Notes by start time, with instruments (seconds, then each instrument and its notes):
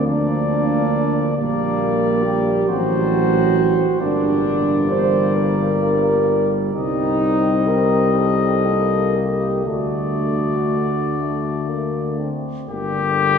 Already playing: tuba D2
0.06 trombone F3, french horn section A#3, euphonium D4, cornet D5
1.37 tuba A#1, trombone G3, french horn section A#3, euphonium A#3, cornet D5
2.23 french horn section G4
2.68 tuba A1, trombone F#3, euphonium C4, french horn section F#4, cornet C5
4.00 tuba G1, trombone G3, euphonium A#3, french horn section D4, cornet D5
4.91 french horn section C5
5.36 french horn section A#4
6.73 tuba C2, trombone G3, euphonium C4, french horn section D#4, cornet D#5
7.68 french horn section A#4
8.18 french horn section A4
8.67 euphonium A#3
9.16 french horn section G4
9.66 tuba D2, trombone D3, euphonium A3, french horn section F#4, cornet D5
11.19 euphonium A3
11.68 euphonium A#3
12.20 euphonium C4
12.68 tuba G1, trombone D3, euphonium A#3, french horn section D4, cornet G4